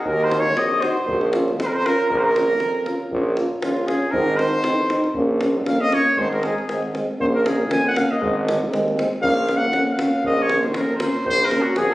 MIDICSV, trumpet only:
0, 0, Header, 1, 2, 480
1, 0, Start_track
1, 0, Key_signature, -5, "minor"
1, 0, Tempo, 509338
1, 49, Time_signature, 2, 2, 24, 8
1, 11254, End_track
2, 0, Start_track
2, 0, Title_t, "Trumpet"
2, 0, Program_c, 0, 56
2, 54, Note_on_c, 0, 70, 105
2, 224, Note_on_c, 0, 72, 93
2, 238, Note_off_c, 0, 70, 0
2, 380, Note_on_c, 0, 73, 98
2, 394, Note_off_c, 0, 72, 0
2, 547, Note_on_c, 0, 75, 97
2, 561, Note_off_c, 0, 73, 0
2, 784, Note_on_c, 0, 72, 85
2, 798, Note_off_c, 0, 75, 0
2, 1259, Note_off_c, 0, 72, 0
2, 1530, Note_on_c, 0, 72, 104
2, 1572, Note_on_c, 0, 70, 74
2, 1586, Note_off_c, 0, 72, 0
2, 1653, Note_on_c, 0, 72, 110
2, 1667, Note_off_c, 0, 70, 0
2, 1752, Note_on_c, 0, 70, 102
2, 1766, Note_off_c, 0, 72, 0
2, 1975, Note_off_c, 0, 70, 0
2, 1980, Note_on_c, 0, 70, 100
2, 2059, Note_on_c, 0, 72, 81
2, 2073, Note_off_c, 0, 70, 0
2, 2118, Note_on_c, 0, 70, 112
2, 2132, Note_off_c, 0, 72, 0
2, 2697, Note_off_c, 0, 70, 0
2, 3432, Note_on_c, 0, 65, 82
2, 3648, Note_on_c, 0, 68, 90
2, 3662, Note_off_c, 0, 65, 0
2, 3874, Note_on_c, 0, 70, 111
2, 3889, Note_off_c, 0, 68, 0
2, 4120, Note_on_c, 0, 72, 103
2, 4134, Note_off_c, 0, 70, 0
2, 4850, Note_off_c, 0, 72, 0
2, 5345, Note_on_c, 0, 77, 104
2, 5474, Note_on_c, 0, 75, 115
2, 5488, Note_off_c, 0, 77, 0
2, 5596, Note_on_c, 0, 73, 102
2, 5610, Note_off_c, 0, 75, 0
2, 5827, Note_on_c, 0, 72, 111
2, 5841, Note_off_c, 0, 73, 0
2, 5947, Note_off_c, 0, 72, 0
2, 5953, Note_on_c, 0, 70, 93
2, 6070, Note_on_c, 0, 68, 86
2, 6084, Note_off_c, 0, 70, 0
2, 6197, Note_off_c, 0, 68, 0
2, 6219, Note_on_c, 0, 68, 72
2, 6430, Note_off_c, 0, 68, 0
2, 6790, Note_on_c, 0, 72, 86
2, 6847, Note_off_c, 0, 72, 0
2, 6923, Note_on_c, 0, 70, 89
2, 7032, Note_on_c, 0, 68, 75
2, 7046, Note_off_c, 0, 70, 0
2, 7266, Note_off_c, 0, 68, 0
2, 7275, Note_on_c, 0, 80, 94
2, 7390, Note_off_c, 0, 80, 0
2, 7415, Note_on_c, 0, 78, 109
2, 7517, Note_on_c, 0, 77, 101
2, 7531, Note_off_c, 0, 78, 0
2, 7651, Note_on_c, 0, 75, 88
2, 7665, Note_off_c, 0, 77, 0
2, 7881, Note_off_c, 0, 75, 0
2, 8690, Note_on_c, 0, 77, 125
2, 9017, Note_on_c, 0, 78, 117
2, 9031, Note_off_c, 0, 77, 0
2, 9282, Note_off_c, 0, 78, 0
2, 9282, Note_on_c, 0, 78, 87
2, 9348, Note_on_c, 0, 77, 111
2, 9362, Note_off_c, 0, 78, 0
2, 9662, Note_off_c, 0, 77, 0
2, 9672, Note_on_c, 0, 75, 108
2, 9821, Note_on_c, 0, 73, 102
2, 9836, Note_off_c, 0, 75, 0
2, 9978, Note_off_c, 0, 73, 0
2, 9985, Note_on_c, 0, 72, 82
2, 10158, Note_on_c, 0, 70, 86
2, 10172, Note_off_c, 0, 72, 0
2, 10306, Note_off_c, 0, 70, 0
2, 10329, Note_on_c, 0, 72, 95
2, 10610, Note_off_c, 0, 72, 0
2, 10638, Note_on_c, 0, 72, 127
2, 10793, Note_on_c, 0, 70, 112
2, 10807, Note_off_c, 0, 72, 0
2, 10950, Note_on_c, 0, 66, 93
2, 10965, Note_off_c, 0, 70, 0
2, 11098, Note_on_c, 0, 68, 105
2, 11112, Note_off_c, 0, 66, 0
2, 11254, Note_off_c, 0, 68, 0
2, 11254, End_track
0, 0, End_of_file